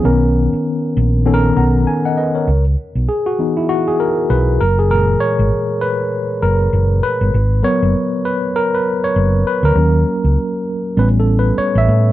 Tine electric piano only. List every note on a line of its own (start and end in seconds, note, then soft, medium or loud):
0.04 1.14 D#3 medium
0.04 1.15 B3 medium
0.04 1.15 C#4 medium
0.04 1.15 A#4 medium
1.26 2.36 D#3 medium
1.26 2.36 B3 medium
1.26 2.37 C#4 medium
1.26 1.34 A4 medium
1.34 1.60 A#4 loud
1.57 1.86 F#5 medium
1.57 1.85 A#5 medium
1.87 2.04 G#5 medium
2.05 2.16 D#5 medium
2.05 2.17 F#5 medium
2.17 2.34 B4 medium
2.17 2.34 D#5 medium
2.35 2.64 A#4 soft
2.35 2.64 C#5 medium
3.09 3.27 G#4 medium
3.26 3.54 F#4 medium
3.39 4.26 E3 medium
3.39 4.26 B3 soft
3.39 4.26 D#4 medium
3.57 3.70 E4 medium
3.69 3.87 F#4 loud
3.88 4.00 G#4 medium
4.00 4.28 A#4 medium
4.30 4.61 B4 loud
4.61 4.78 A#4 medium
4.79 4.84 G#4 medium
4.90 7.30 A#2 medium
4.90 7.29 E3 medium
4.90 7.29 G#3 soft
4.90 5.22 A#4 medium
5.20 5.83 C#5 loud
5.81 6.44 B4 loud
6.42 7.05 A#4 medium
7.03 7.60 B4 loud
7.63 8.50 F#3 medium
7.63 8.51 B3 medium
7.63 8.50 A#4 medium
7.63 8.26 C#5 loud
8.25 8.56 B4 medium
8.56 8.73 A#4 loud
8.74 9.02 B4 medium
9.04 9.43 C#5 loud
9.47 9.64 B4 medium
9.65 10.51 A#4 medium
9.76 10.63 F#3 medium
9.76 10.63 A#3 soft
9.76 10.64 C#4 medium
10.97 11.84 G3 medium
10.97 11.84 B3 medium
10.97 11.85 C#4 medium
10.97 11.08 B4 medium
11.20 11.28 A4 medium
11.39 11.59 B4 medium
11.58 11.77 C#5 loud
11.78 12.06 E5 medium